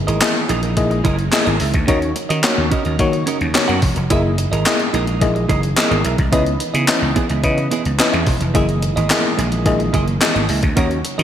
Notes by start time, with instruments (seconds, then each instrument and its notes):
Already playing: string machine D#3 E3 G#3 A#3
0.07 slap bass G#1, clean electric guitar E4 G#4 A#4 D#5, closed hi-hat
0.21 fm electric piano A#3 E4 G#4 D#5, muted clean electric guitar stroke, snare, clap, closed hi-hat
0.35 muted clean electric guitar stroke
0.49 slap bass A#1, clean electric guitar E4 G#4 A#4 D#5, closed hi-hat
0.63 clean electric guitar E4 G#4 A#4 D#5, closed hi-hat
0.77 slap bass A#1, fm electric piano A#3 E4 G#4 D#5, muted clean electric guitar stroke, kick, closed hi-hat
0.91 muted clean electric guitar stroke, closed hi-hat
1.04 slap bass F#1, clean electric guitar E4 G#4 A#4 D#5, kick, closed hi-hat
1.18 muted clean electric guitar stroke, closed hi-hat
1.32 fm electric piano A#3 E4 G#4 D#5, muted clean electric guitar stroke, snare, clap, closed hi-hat
1.46 slap bass G#1, clean electric guitar E4 G#4 A#4 D#5, closed hi-hat
1.60 slap bass C#2, clean electric guitar E4 G#4 A#4 E5, open hi-hat
1.74 slap bass D2, muted clean electric guitar stroke, kick, closed hi-hat
1.87 slap bass D#2, string machine C#3 F#3 D#4, fm electric piano A#3 D#4 F#4 C#5, clean electric guitar C#4 F#4 A#4 D#5, kick, closed hi-hat
2.01 muted clean electric guitar stroke, closed hi-hat
2.16 muted clean electric guitar stroke, closed hi-hat
2.29 slap bass D#3, clean electric guitar C#4 F#4 A#4 D#5, closed hi-hat
2.43 fm electric piano A#3 D#4 F#4 C#5, muted clean electric guitar stroke, snare, clap, closed hi-hat
2.57 slap bass D#2, muted clean electric guitar stroke
2.71 clean electric guitar C#4 F#4 A#4 D#5, kick, closed hi-hat
2.85 slap bass D#2, clean electric guitar C#4 F#4 A#4 D#5, closed hi-hat
2.99 slap bass D#3, fm electric piano A#3 D#4 F#4 C#5, muted clean electric guitar stroke, kick, closed hi-hat
3.12 muted clean electric guitar stroke, closed hi-hat
3.26 clean electric guitar C#4 F#4 A#4 D#5, closed hi-hat
3.40 slap bass D#2, muted clean electric guitar stroke, closed hi-hat
3.54 fm electric piano A#3 D#4 F#4 C#5, muted clean electric guitar stroke, snare, clap, closed hi-hat
3.68 slap bass F#2, clean electric guitar C#4 F#4 A#4 F#5, closed hi-hat
3.82 slap bass E1, muted clean electric guitar stroke, kick, open hi-hat
3.96 slap bass F1, muted clean electric guitar stroke, closed hi-hat
4.10 slap bass F#1, string machine E3 G#3 A#3 D#4, fm electric piano A#3 E4 G#4 D#5, clean electric guitar E4 G#4 A#4 E5, kick, closed hi-hat
4.24 muted clean electric guitar stroke
4.38 muted clean electric guitar stroke, closed hi-hat
4.52 slap bass G#1, clean electric guitar E4 G#4 A#4 D#5, closed hi-hat
4.66 fm electric piano A#3 E4 G#4 D#5, snare, clap, closed hi-hat
4.79 muted clean electric guitar stroke, closed hi-hat
4.93 slap bass A#1, clean electric guitar E4 G#4 A#4 D#5, closed hi-hat
5.07 clean electric guitar E4 G#4 A#4 D#5, closed hi-hat
5.21 slap bass A#1, fm electric piano A#3 E4 G#4 D#5, muted clean electric guitar stroke, kick, closed hi-hat
5.35 muted clean electric guitar stroke, closed hi-hat
5.49 slap bass F#1, clean electric guitar E4 G#4 A#4 D#5, kick, closed hi-hat
5.63 muted clean electric guitar stroke, closed hi-hat
5.76 fm electric piano A#3 E4 G#4 D#5, muted clean electric guitar stroke, snare, clap, closed hi-hat
5.90 slap bass G#1, clean electric guitar E4 G#4 A#4 D#5, closed hi-hat
6.04 slap bass B1, clean electric guitar E4 G#4 A#4 E5, closed hi-hat
6.18 slap bass C2, muted clean electric guitar stroke, kick, closed hi-hat
6.32 slap bass C#2, clean electric guitar B3 E4 G#4 D#5, string machine B3, fm electric piano C#4 E4 B4 D#5, kick, closed hi-hat
6.46 muted clean electric guitar stroke, closed hi-hat
6.60 muted clean electric guitar stroke, closed hi-hat
6.74 slap bass C#3, clean electric guitar B3 E4 G#4 D#5, closed hi-hat
6.88 fm electric piano C#4 E4 B4 D#5, snare, clap, closed hi-hat
7.02 slap bass C#2, muted clean electric guitar stroke
7.15 clean electric guitar B3 E4 G#4 D#5, kick, closed hi-hat
7.29 slap bass C#2, clean electric guitar B3 E4 G#4 D#5, closed hi-hat
7.43 slap bass C#3, fm electric piano C#4 E4 B4 D#5, kick, closed hi-hat
7.57 muted clean electric guitar stroke, closed hi-hat
7.71 clean electric guitar B3 E4 G#4 D#5, closed hi-hat
7.85 slap bass C#2, muted clean electric guitar stroke, closed hi-hat
7.99 fm electric piano C#4 E4 B4 D#5, muted clean electric guitar stroke, snare, clap, closed hi-hat
8.13 slap bass E2, clean electric guitar B3 E4 G#4 E5, closed hi-hat
8.27 slap bass E1, muted clean electric guitar stroke, kick, open hi-hat
8.41 slap bass F1, muted clean electric guitar stroke, closed hi-hat
8.54 slap bass F#1, string machine D#3 G#3 A#3, clean electric guitar A#3 E4 G#4 E5, fm electric piano A#3 E4 G#4 D#5, kick, closed hi-hat
8.68 muted clean electric guitar stroke, closed hi-hat
8.82 muted clean electric guitar stroke, closed hi-hat
8.96 slap bass G#1, clean electric guitar A#3 E4 G#4 D#5, closed hi-hat
9.10 fm electric piano A#3 E4 G#4 D#5, muted clean electric guitar stroke, snare, clap, closed hi-hat
9.24 muted clean electric guitar stroke
9.37 slap bass A#1, clean electric guitar A#3 E4 G#4 D#5, closed hi-hat
9.51 clean electric guitar A#3 E4 G#4 D#5, closed hi-hat
9.65 slap bass A#1, fm electric piano A#3 E4 G#4 D#5, muted clean electric guitar stroke, kick, closed hi-hat
9.79 muted clean electric guitar stroke, closed hi-hat
9.93 slap bass F#1, clean electric guitar A#3 E4 G#4 D#5, kick, closed hi-hat
10.07 muted clean electric guitar stroke, closed hi-hat
10.21 fm electric piano A#3 E4 G#4 D#5, muted clean electric guitar stroke, snare, clap, closed hi-hat
10.35 slap bass G#1, clean electric guitar A#3 E4 G#4 D#5, closed hi-hat
10.49 slap bass C#2, clean electric guitar A#3 E4 G#4 E5, open hi-hat
10.63 slap bass D2, muted clean electric guitar stroke, kick, closed hi-hat
10.76 slap bass D#2, string machine C#3 F#3 D#4, fm electric piano A#3 D#4 F#4 C#5, clean electric guitar C#4 F#4 A#4 D#5, kick, closed hi-hat
10.90 muted clean electric guitar stroke, closed hi-hat
11.04 muted clean electric guitar stroke, closed hi-hat
11.18 slap bass D#3, clean electric guitar C#4 F#4 A#4 D#5, closed hi-hat